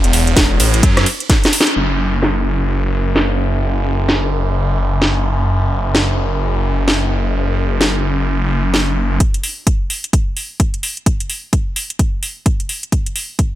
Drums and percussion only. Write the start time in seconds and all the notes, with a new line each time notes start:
0.04 closed hi-hat
0.13 open hi-hat, ride
0.27 closed hi-hat
0.37 kick, snare, closed hi-hat
0.60 open hi-hat, ride
0.74 closed hi-hat
0.83 kick, closed hi-hat
0.97 cross-stick, snare, closed hi-hat
1.06 open hi-hat, ride
1.20 closed hi-hat
1.30 kick, snare, closed hi-hat
1.44 snare, closed hi-hat
1.53 open hi-hat, ride
1.61 snare
1.67 closed hi-hat
2.23 snare
3.16 snare
4.09 snare
5.02 snare
5.95 snare
6.88 snare
7.81 snare
8.74 snare
9.20 kick, closed hi-hat
9.34 closed hi-hat
9.43 open hi-hat
9.67 kick, closed hi-hat
9.90 open hi-hat
10.04 closed hi-hat
10.13 kick, closed hi-hat
10.37 open hi-hat
10.60 kick, closed hi-hat
10.74 closed hi-hat
10.83 open hi-hat
10.97 closed hi-hat
11.06 kick, closed hi-hat
11.20 closed hi-hat
11.30 open hi-hat
11.53 kick, closed hi-hat
11.76 open hi-hat
11.90 closed hi-hat
11.99 kick, closed hi-hat
12.23 open hi-hat
12.46 kick, closed hi-hat
12.60 closed hi-hat
12.69 open hi-hat
12.83 closed hi-hat
12.92 kick, closed hi-hat
13.06 closed hi-hat
13.16 open hi-hat
13.39 kick, closed hi-hat